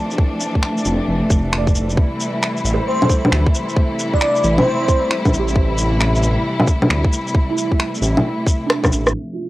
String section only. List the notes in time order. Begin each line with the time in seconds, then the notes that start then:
Already playing: C3 E3 F3 A3 D4
1.98 C3 G3 E4
9.14 C3 F3 A3 E5